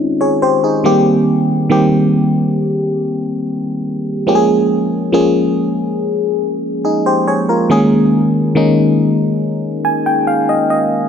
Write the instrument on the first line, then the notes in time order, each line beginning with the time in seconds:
fm electric piano
Already playing: D#3 G#3 C4 C#4 D#4
0.21 G#4 C#5
0.42 G4 C5
0.64 D#4 G#4
0.84 D#3 G3 A#3 C4 G4
1.70 D#3 G3 A#3 C4 G4
4.27 F3 G#3 A#3 C#4 G4
4.35 G#4
5.12 F3 G#3 A#3 C#4 G#4
6.85 D#4 G#4
7.06 G4 C5
7.28 G#4 C#5
7.49 F4 A#4
7.70 D#3 G#3 A#3 C#4 G#4
8.55 D#3 G#3 A#3 C#4 D#4
9.85 G#5
10.06 G5
10.27 F5
10.49 D#5
10.70 D#5